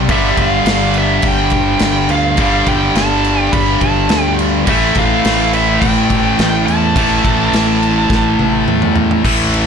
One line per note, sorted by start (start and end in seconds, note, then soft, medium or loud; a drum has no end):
0.00 0.11 G3 loud
0.09 0.35 G1 loud
0.09 2.36 G2 medium
0.09 2.37 D3 medium
0.09 2.38 G3 loud
0.09 0.40 E5 medium
0.09 kick loud
0.09 crash medium
0.37 0.64 G1 medium
0.37 kick medium
0.37 crash medium
0.42 0.98 F5 medium
0.65 1.19 G1 medium
0.65 snare loud
0.65 crash medium
0.94 crash medium
0.98 1.26 E5 medium
1.22 1.77 G1 medium
1.22 kick loud
1.22 crash medium
1.28 1.83 G5 medium
1.50 kick medium
1.50 crash medium
1.79 2.07 G1 loud
1.79 snare loud
1.79 crash medium
1.84 2.09 G5 medium
2.09 2.36 D2 medium
2.09 2.69 F5 loud
2.09 crash medium
2.37 2.64 G1 loud
2.37 4.65 G2 medium
2.37 4.66 D3 loud
2.37 4.66 G3 loud
2.37 kick loud
2.37 crash medium
2.66 2.93 G1 medium
2.66 2.96 G5 loud
2.66 kick medium
2.66 crash medium
2.95 3.48 G1 medium
2.95 3.42 A5 loud
2.95 snare loud
2.95 crash medium
3.24 crash medium
3.42 3.55 G5 loud
3.52 3.79 G1 loud
3.52 3.82 B5 loud
3.52 kick loud
3.52 crash medium
3.81 4.08 G1 medium
3.81 4.23 A5 medium
3.81 kick medium
3.81 crash medium
4.09 4.63 D2 loud
4.09 snare loud
4.09 crash medium
4.23 4.34 G5 medium
4.39 crash medium
4.66 4.94 A1 loud
4.66 6.95 A2 loud
4.66 6.97 E3 loud
4.66 6.98 A3 loud
4.66 4.95 E5 medium
4.66 kick loud
4.66 crash medium
4.95 5.22 A1 medium
4.95 kick medium
4.95 crash medium
4.99 5.54 F5 loud
5.25 5.78 A1 medium
5.25 snare loud
5.25 crash medium
5.53 5.83 E5 medium
5.53 crash medium
5.80 6.35 A1 loud
5.80 6.39 G5 loud
5.80 kick loud
5.80 crash loud
6.10 kick medium
6.10 crash medium
6.39 6.65 A1 loud
6.39 6.66 G5 medium
6.39 snare loud
6.39 crash medium
6.67 6.94 E2 medium
6.67 8.63 A5 loud
6.67 crash medium
6.96 7.22 A1 loud
6.96 9.23 A2 medium
6.96 9.24 E3 loud
6.96 9.24 A3 loud
6.96 kick loud
6.96 crash medium
7.24 7.51 A1 medium
7.24 kick medium
7.24 crash medium
7.53 8.06 A1 loud
7.53 snare loud
7.53 crash medium
7.83 crash medium
8.10 8.36 A1 medium
8.10 kick loud
8.10 snare medium
8.39 8.66 A1 medium
8.39 high tom medium
8.68 9.21 E2 medium
8.68 mid tom medium
8.82 mid tom medium
8.96 floor tom loud
9.11 floor tom loud
9.24 9.67 A1 medium
9.24 9.67 A2 medium
9.24 9.67 E3 loud
9.24 9.67 A3 medium
9.24 kick loud
9.24 crash loud
9.54 ride medium